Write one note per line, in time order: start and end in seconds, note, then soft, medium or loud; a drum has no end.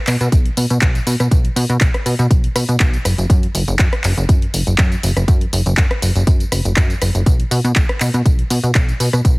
0.07 0.16 B2 medium
0.07 clap medium
0.07 open hi-hat loud
0.07 tambourine medium
0.21 0.28 B2 loud
0.21 closed hi-hat soft
0.21 tambourine soft
0.32 0.49 B1 medium
0.32 kick loud
0.32 closed hi-hat loud
0.32 tambourine soft
0.46 closed hi-hat soft
0.57 0.66 B2 medium
0.57 open hi-hat loud
0.57 tambourine medium
0.70 0.78 B2 medium
0.70 closed hi-hat soft
0.70 tambourine soft
0.81 0.99 B1 loud
0.81 kick loud
0.81 clap loud
0.81 closed hi-hat loud
0.81 tambourine soft
0.95 closed hi-hat soft
0.95 tambourine soft
1.07 1.15 B2 medium
1.07 open hi-hat loud
1.07 tambourine medium
1.20 1.28 B2 medium
1.20 cross-stick medium
1.20 closed hi-hat soft
1.20 tambourine soft
1.31 1.48 B1 loud
1.31 kick loud
1.31 closed hi-hat loud
1.31 tambourine soft
1.45 closed hi-hat soft
1.56 1.65 B2 loud
1.56 open hi-hat loud
1.56 tambourine medium
1.69 1.77 B2 loud
1.69 closed hi-hat soft
1.69 tambourine soft
1.81 1.90 B1 medium
1.81 kick loud
1.81 clap loud
1.81 closed hi-hat loud
1.81 tambourine soft
1.94 cross-stick medium
1.94 closed hi-hat soft
2.06 2.15 B2 medium
2.06 open hi-hat loud
2.06 tambourine medium
2.19 2.27 B2 loud
2.19 closed hi-hat soft
2.19 tambourine soft
2.31 2.48 B1 medium
2.31 kick loud
2.31 closed hi-hat loud
2.31 tambourine soft
2.44 closed hi-hat soft
2.55 2.64 B2 medium
2.55 cross-stick medium
2.55 open hi-hat loud
2.55 tambourine medium
2.69 2.76 B2 medium
2.69 closed hi-hat soft
2.69 tambourine soft
2.80 2.97 B1 loud
2.80 kick loud
2.80 clap loud
2.80 closed hi-hat loud
2.80 tambourine soft
2.94 closed hi-hat soft
2.94 tambourine soft
3.05 3.14 F#1 medium
3.05 cross-stick medium
3.05 open hi-hat loud
3.05 tambourine medium
3.18 3.26 F#1 medium
3.18 closed hi-hat soft
3.18 tambourine soft
3.30 3.47 F#2 loud
3.30 kick loud
3.30 closed hi-hat medium
3.30 tambourine soft
3.43 closed hi-hat soft
3.55 3.63 F#1 loud
3.55 open hi-hat loud
3.55 tambourine medium
3.68 3.76 F#1 loud
3.68 closed hi-hat soft
3.68 tambourine soft
3.79 3.88 F#2 medium
3.79 kick loud
3.79 clap loud
3.79 closed hi-hat medium
3.79 tambourine soft
3.93 cross-stick medium
3.93 closed hi-hat soft
4.04 4.13 F#1 medium
4.04 clap medium
4.04 open hi-hat loud
4.04 tambourine medium
4.17 4.25 F#1 loud
4.17 closed hi-hat soft
4.17 tambourine soft
4.29 4.46 F#2 medium
4.29 kick loud
4.29 closed hi-hat medium
4.29 tambourine soft
4.42 closed hi-hat soft
4.54 4.63 F#1 medium
4.54 open hi-hat loud
4.54 tambourine medium
4.67 4.75 F#1 medium
4.67 tambourine soft
4.78 4.96 F#2 loud
4.78 kick loud
4.78 clap loud
4.78 closed hi-hat medium
4.78 tambourine soft
4.92 closed hi-hat soft
4.92 tambourine soft
5.03 5.12 F#1 medium
5.03 open hi-hat loud
5.03 tambourine medium
5.17 5.24 F#1 medium
5.17 cross-stick medium
5.17 closed hi-hat soft
5.17 tambourine soft
5.28 5.45 F#2 loud
5.28 kick loud
5.28 closed hi-hat medium
5.28 tambourine soft
5.41 closed hi-hat soft
5.53 5.62 F#1 loud
5.53 open hi-hat loud
5.53 tambourine medium
5.66 5.74 F#1 loud
5.66 closed hi-hat soft
5.66 tambourine soft
5.77 5.86 F#2 medium
5.77 kick loud
5.77 clap loud
5.77 closed hi-hat medium
5.77 tambourine soft
5.91 cross-stick medium
5.91 closed hi-hat soft
6.02 6.11 F#1 medium
6.02 open hi-hat loud
6.02 tambourine medium
6.16 6.23 F#1 loud
6.16 closed hi-hat soft
6.16 tambourine soft
6.27 6.44 F#2 medium
6.27 kick loud
6.27 closed hi-hat medium
6.27 tambourine soft
6.40 closed hi-hat soft
6.40 tambourine soft
6.52 6.61 F#1 medium
6.52 cross-stick medium
6.52 open hi-hat loud
6.52 tambourine medium
6.65 6.73 F#1 medium
6.65 closed hi-hat soft
6.65 tambourine soft
6.76 6.94 F#2 loud
6.76 kick loud
6.76 clap loud
6.76 closed hi-hat medium
6.76 tambourine soft
6.90 closed hi-hat soft
6.90 tambourine soft
7.02 7.10 F#1 medium
7.02 cross-stick medium
7.02 open hi-hat loud
7.02 tambourine medium
7.15 7.23 F#1 medium
7.15 closed hi-hat soft
7.15 tambourine soft
7.26 7.43 B1 loud
7.26 kick loud
7.26 closed hi-hat medium
7.26 tambourine soft
7.40 closed hi-hat soft
7.51 7.60 B2 loud
7.51 open hi-hat loud
7.51 tambourine medium
7.64 7.72 B2 loud
7.64 closed hi-hat soft
7.64 tambourine soft
7.76 7.85 B1 medium
7.76 kick loud
7.76 clap loud
7.76 closed hi-hat medium
7.76 tambourine soft
7.89 cross-stick medium
7.89 closed hi-hat soft
8.00 8.10 B2 medium
8.00 clap medium
8.00 open hi-hat loud
8.00 tambourine medium
8.14 8.22 B2 loud
8.14 closed hi-hat soft
8.14 tambourine soft
8.26 8.43 B1 medium
8.26 kick loud
8.26 closed hi-hat medium
8.26 tambourine soft
8.39 closed hi-hat soft
8.50 8.59 B2 medium
8.50 open hi-hat loud
8.50 tambourine medium
8.63 8.71 B2 medium
8.63 closed hi-hat soft
8.63 tambourine soft
8.75 8.92 B1 loud
8.75 kick loud
8.75 clap loud
8.75 closed hi-hat medium
8.75 tambourine soft
8.89 closed hi-hat soft
8.89 tambourine soft
9.00 9.09 B2 medium
9.00 open hi-hat loud
9.00 tambourine medium
9.13 9.21 B2 medium
9.13 cross-stick medium
9.13 closed hi-hat soft
9.13 tambourine soft
9.25 9.39 B1 loud
9.25 kick loud
9.25 closed hi-hat medium
9.25 tambourine soft